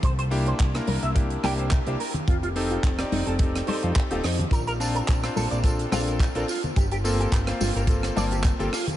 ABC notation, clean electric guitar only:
X:1
M:4/4
L:1/16
Q:"Swing 16ths" 1/4=107
K:Gm
V:1 name="Clean electric guitar"
c c z c z2 B =e z2 g c z c B z | F F z F z2 E A z2 c F z F E z | B B z B z2 A d z2 f B z B F z | G G z G z2 F B z2 d G z G F z |]